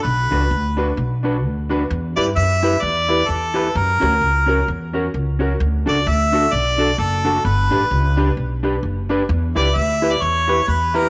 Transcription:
X:1
M:4/4
L:1/16
Q:"Swing" 1/4=130
K:Edor
V:1 name="Harmonica"
B8 z8 | z2 d2 e4 d4 A4 | ^A8 z8 | z2 d2 e4 d4 A4 |
B8 z8 | z2 d2 e3 d c4 B2 ^A2 |]
V:2 name="Upright piano"
z2 [DFB]2 z2 [DFB]2 z2 [DFB]2 [FB]2 [DFB]2 | z2 [EGB]2 z2 [EGB]2 z2 [EGB]2 z2 [EGB]2 | z2 [CF^A]2 z2 [CFA]2 z2 [CFA]2 [FA]2 [CFA]2 | z2 [DFA]2 [FA]2 [DFA]2 z2 [DFA]2 z2 [DFA]2 |
z2 [DGB]2 z2 [DGB]2 z2 [DGB]2 [GB]2 [DGB]2 | z2 [EGB]2 [GB]2 [EGB]2 z2 [EGB]2 z2 [EGB]2 |]
V:3 name="Clean electric guitar"
z2 [DFB]2 z2 [DFB]2 z2 [DFB]2 z2 [DFB]2 | z2 [EGB]2 z2 [EGB]2 z2 [EGB]2 z2 [EGB]2 | z2 [CF^A]2 z2 [CFA]2 z2 [CFA]2 z2 [CFA]2 | z2 [DFA]2 z2 [DFA]2 z2 [DFA]2 z2 [DFA]2 |
z2 [DGB]2 z2 [DGB]2 z2 [DGB]2 z2 [DGB]2 | z2 [EGB]2 z2 [EGB]2 z2 [EGB]2 z2 [EGB]2 |]
V:4 name="Upright bass" clef=bass
B,,,2 C,,2 D,,4 B,,,4 D,,4 | E,,2 G,,2 F,,4 E,,4 E,,4 | F,,2 D,,2 C,,4 E,,4 C,,4 | D,,2 C,,2 D,,4 B,,,4 F,,,4 |
G,,,2 A,,,2 C,,4 B,,,4 F,,,4 | E,,2 C,,2 D,,4 E,,4 E,,4 |]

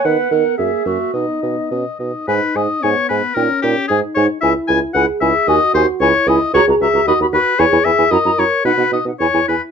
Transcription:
X:1
M:2/4
L:1/16
Q:1/4=113
K:B
V:1 name="Flute"
f4 e4 | d6 z2 | [K:G#m] g2 g2 g2 g2 | =g2 g2 ^g2 g2 |
g2 g2 g2 g2 | g2 g2 g2 g2 | [K:B] a a a a b b b z | g g g g a a a z |
f f f f g g g z |]
V:2 name="Oboe"
f2 f2 e2 e2 | d2 d2 d2 d2 | [K:G#m] B2 d2 c2 B2 | A2 =G2 ^G2 c2 |
e2 g2 f2 e2 | d2 ^B2 c2 d2 | [K:B] c2 e2 d2 B2 | c2 e2 d2 c2 |
B2 d2 c2 B2 |]
V:3 name="Clarinet"
B2 A2 G2 F2 | D4 z4 | [K:G#m] D2 D2 D2 D2 | D2 D2 D2 D2 |
E2 E2 E2 E2 | F2 F2 E2 E2 | [K:B] F F F F F F F z | E E E E E E E z |
D D D D E E E z |]
V:4 name="French horn"
B,2 B,2 A,2 A,2 | B,2 B,2 C2 D2 | [K:G#m] D4 B,4 | C4 D4 |
E4 G4 | F4 E4 | [K:B] G4 F4 | G4 A4 |
F2 z2 E4 |]
V:5 name="Bassoon" clef=bass
D,2 D,2 F,,2 F,,2 | B,,2 B,,2 B,,2 B,,2 | [K:G#m] G,,2 G,,2 G,,2 G,,2 | A,,2 A,,2 G,,2 G,,2 |
C,,2 C,,2 C,,2 C,,2 | D,,2 D,,2 C,,2 C,,2 | [K:B] C,, C,, C,, C,, D,, D,, D,, z | E,, E,, E,, E,, F,, F,, F,, z |
B,, B,, B,, B,, E,, E,, E,, z |]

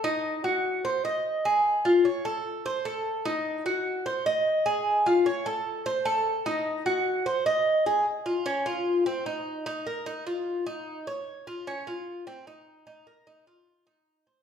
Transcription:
X:1
M:4/4
L:1/8
Q:1/4=150
K:Ebdor
V:1 name="Cuban tres"
E2 G2 c e2 A- | A F ^c =A2 =c A2 | E2 G2 c e2 A- | A F ^c =A2 =c A2 |
E2 G2 c e2 A | z F D F2 C E2 | E B E F2 E2 d- | d F D F2 C E2 |
E B E F2 E2 c |]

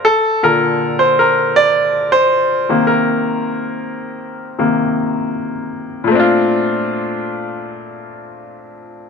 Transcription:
X:1
M:4/4
L:1/16
Q:1/4=79
K:Bb
V:1 name="Grand piano"
A2 B3 c B2 d3 c4 B- | B12 z4 | [B,,A,CDF]16 |]
V:2 name="Grand piano" clef=bass
z2 [B,,D,A]12 [C,E,B,]2 | z8 [C,E,B,]2 z6 | z16 |]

